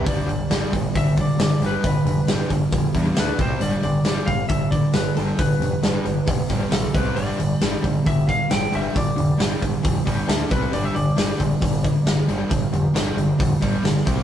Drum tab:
HH |o-o-o-o-o-o-o-o-|o-o-o-o-o-o-o-o-|o-o-o-o-o-o-o-o-|o-o-o-o-o-o-o-o-|
SD |----o-------o---|----o-------o---|----o-------o---|----o-------oo--|
BD |o-----o-o-o-----|o-----o-o-o---o-|------o-o-o-----|o-------o-o---o-|

HH |o-o-o-o-o-o-o-o-|o-o-o-o-o-o-o-o-|o-o-o-o-o-o-o-o-|o-o-o-o-o-o-o-o-|
SD |----o-------o---|----o-------o---|----o-------o---|----o-------oo--|
BD |------o-o-o-----|o-----o-o-o---o-|------o-o-o-----|o-------o-o---o-|